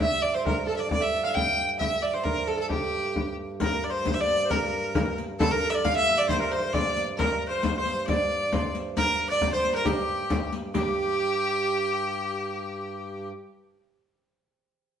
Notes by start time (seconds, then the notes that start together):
Already playing: A#4 C5 D5
0.00 G2 E5, frame drum
0.22 D5, frame drum
0.34 C5
0.45 A#4, frame drum
0.67 A4, frame drum
0.76 D5 E5
0.89 D5, frame drum
1.00 E5
1.14 frame drum
1.23 E5 F5
1.29 F5
1.35 G5, frame drum
1.58 frame drum
1.79 E5, frame drum
2.02 D5, frame drum
2.14 C5
2.24 A#4, frame drum
2.47 A4, frame drum
2.57 A4
2.69 G4, frame drum
3.16 frame drum
3.60 G2 A#4, riq, frame drum
3.83 D5, riq
3.90 C5
4.05 riq, frame drum
4.14 E5
4.20 D5
4.28 riq
4.44 C5
4.50 A#4, riq, frame drum
4.73 riq
4.94 A#4, riq, frame drum
5.18 riq
5.38 A4, riq, frame drum
5.50 A#4
5.62 riq
5.70 D5 E5
5.75 D5
5.84 F5, riq, frame drum
5.95 E5
6.07 riq
6.18 D5
6.28 C5, riq, frame drum
6.40 A#4
6.51 C5, frame drum
6.58 C5
6.64 C5
6.73 D5, riq, frame drum
6.96 riq
7.18 G2 A#4, riq, frame drum
7.47 C5
7.63 riq, frame drum
7.78 C5
7.85 riq
8.07 D5, riq, frame drum
8.30 riq
8.52 C5, riq, frame drum
8.75 riq
8.96 A#4, riq, frame drum
9.19 riq
9.29 D5
9.41 riq, frame drum
9.52 C5
9.64 riq
9.75 A#4
9.85 G4, riq, frame drum
10.08 frame drum
10.30 riq, frame drum
10.52 riq, frame drum
10.74 G2 G4, riq, frame drum